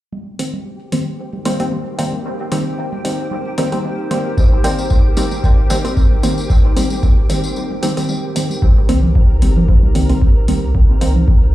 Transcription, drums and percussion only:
0.13 high conga
0.39 open hi-hat
0.54 high conga
0.92 open hi-hat, high conga
1.33 high conga
1.45 open hi-hat
1.60 open hi-hat
1.72 high conga
1.99 open hi-hat
2.13 high conga
2.52 open hi-hat, high conga
2.93 high conga
3.05 open hi-hat
3.31 high conga
3.58 open hi-hat
3.72 open hi-hat, high conga
4.11 open hi-hat, high conga
4.38 kick, tambourine
4.52 high conga
4.64 open hi-hat, tambourine
4.79 tambourine
4.90 kick, tambourine, high conga
5.17 open hi-hat, tambourine
5.31 tambourine, high conga
5.44 kick, tambourine
5.70 open hi-hat, tambourine, high conga
5.85 open hi-hat, tambourine
5.97 kick, tambourine
6.11 high conga
6.23 open hi-hat, tambourine
6.38 tambourine
6.50 kick, tambourine, high conga
6.77 open hi-hat, tambourine
6.90 tambourine, high conga
7.03 kick, tambourine
7.30 open hi-hat, tambourine, high conga
7.44 tambourine
7.56 tambourine
7.71 high conga
7.83 open hi-hat, tambourine
7.97 open hi-hat, tambourine
8.09 tambourine, high conga
8.36 open hi-hat, tambourine
8.50 tambourine, high conga
8.62 kick, high conga
8.89 open hi-hat
9.03 low conga
9.15 kick
9.42 open hi-hat
9.57 low conga
9.69 kick
9.83 high conga
9.95 open hi-hat, high conga
10.09 open hi-hat
10.22 kick
10.48 open hi-hat
10.75 kick
11.01 open hi-hat
11.16 low conga
11.28 kick

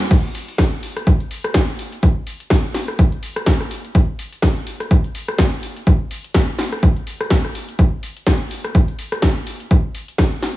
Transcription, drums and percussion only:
0.00 closed hi-hat
0.11 kick, closed hi-hat, crash
0.35 open hi-hat
0.48 closed hi-hat
0.58 kick, snare, closed hi-hat
0.73 closed hi-hat
0.83 open hi-hat
0.97 cross-stick, closed hi-hat
1.07 kick, closed hi-hat
1.20 closed hi-hat
1.31 open hi-hat
1.44 cross-stick, closed hi-hat
1.54 kick, snare, closed hi-hat
1.68 closed hi-hat
1.79 open hi-hat
1.92 closed hi-hat
2.03 kick, closed hi-hat
2.27 open hi-hat
2.40 closed hi-hat
2.50 kick, snare, closed hi-hat
2.64 closed hi-hat
2.74 snare, open hi-hat
2.88 cross-stick, closed hi-hat
2.99 kick, closed hi-hat
3.12 closed hi-hat
3.23 open hi-hat
3.36 cross-stick, closed hi-hat
3.46 kick, snare, closed hi-hat
3.60 cross-stick, closed hi-hat
3.71 open hi-hat
3.85 closed hi-hat
3.95 kick, closed hi-hat
4.19 open hi-hat
4.32 closed hi-hat
4.42 kick, snare, closed hi-hat
4.56 closed hi-hat
4.67 open hi-hat
4.80 cross-stick, closed hi-hat
4.91 kick, closed hi-hat
5.04 closed hi-hat
5.15 open hi-hat
5.28 cross-stick, closed hi-hat
5.38 kick, snare, closed hi-hat
5.52 closed hi-hat
5.63 open hi-hat
5.76 closed hi-hat
5.87 kick, closed hi-hat
6.11 open hi-hat
6.24 closed hi-hat
6.34 kick, snare, closed hi-hat
6.49 closed hi-hat
6.59 snare, open hi-hat
6.72 cross-stick, closed hi-hat
6.83 kick, closed hi-hat
6.96 closed hi-hat
7.07 open hi-hat
7.21 cross-stick, closed hi-hat
7.30 kick, snare, closed hi-hat
7.45 cross-stick, closed hi-hat
7.55 open hi-hat
7.69 closed hi-hat
7.79 kick, closed hi-hat
8.03 open hi-hat
8.17 closed hi-hat
8.27 kick, snare, closed hi-hat
8.41 closed hi-hat
8.51 open hi-hat
8.64 cross-stick, closed hi-hat
8.75 kick, closed hi-hat
8.88 closed hi-hat
8.99 open hi-hat
9.12 cross-stick, closed hi-hat
9.22 kick, snare, closed hi-hat
9.36 closed hi-hat
9.47 open hi-hat
9.60 closed hi-hat
9.71 kick, closed hi-hat
9.95 open hi-hat
10.08 closed hi-hat
10.18 kick, snare, closed hi-hat
10.32 closed hi-hat
10.42 snare, open hi-hat

